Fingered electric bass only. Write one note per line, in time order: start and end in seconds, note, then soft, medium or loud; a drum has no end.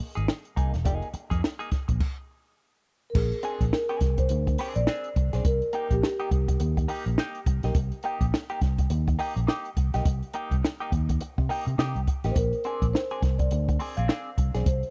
0.17 0.27 G#1 medium
0.57 0.72 C2 medium
0.74 0.86 E1 medium
0.86 1.01 F1 medium
1.14 muted fingered electric bass stroke soft
1.31 1.42 F2 medium
1.72 muted fingered electric bass stroke soft
1.89 1.99 A#1 medium
3.15 3.30 A#1 loud
3.61 3.71 A#1 medium
4.01 4.27 C2 medium
4.30 4.56 D2 medium
4.76 4.86 A#1 medium
5.16 5.32 C2 medium
5.34 5.44 B1 loud
5.45 5.60 C2 loud
5.91 6.01 A#1 loud
6.31 6.57 C2 medium
6.60 6.86 D#2 medium
7.06 7.16 A#1 medium
7.47 7.62 C2 medium
7.64 7.74 B1 loud
7.75 7.90 C2 loud
8.21 8.31 A#1 medium
8.62 8.87 C2 medium
8.90 9.16 D#2 loud
9.36 9.47 A#1 loud
9.77 9.92 C2 medium
9.95 10.04 B1 loud
10.05 10.21 C2 medium
10.51 10.62 C2 medium
10.92 11.17 D#2 loud
11.38 11.48 C3 medium
11.67 11.77 C3 medium
11.78 11.94 C3 medium
11.95 12.06 C2 medium
12.24 12.35 A1 medium
12.36 12.51 A#1 loud
12.82 12.92 A#1 medium
13.22 13.48 C2 loud
13.52 13.77 D2 medium
13.98 14.08 A#1 medium
14.38 14.53 C2 medium
14.55 14.65 B1 medium
14.66 14.81 C2 loud